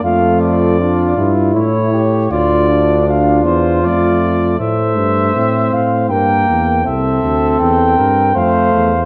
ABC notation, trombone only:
X:1
M:3/4
L:1/8
Q:1/4=79
K:Gm
V:1 name="Trombone"
A,2 D =E2 z | F D3 A,2 | A,2 C2 B,2 | C4 A,2 |]